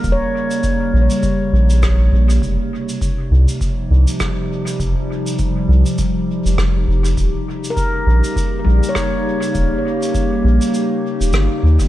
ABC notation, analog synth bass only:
X:1
M:4/4
L:1/16
Q:"Swing 16ths" 1/4=101
K:Ebmix
V:1 name="Analog synth bass" clef=bass
E,,, z4 z B,,, z3 B,,,4 B,,,2 | F,,, z4 z C,, z3 C,, z4 z | F,,, z4 z C,, z4 F,,,3 F,,,2 | E,,, z4 z B,,, z3 B,,, z4 z |
E,,, z4 z B,,, z4 E,,, G,,, z E,, G,,, |]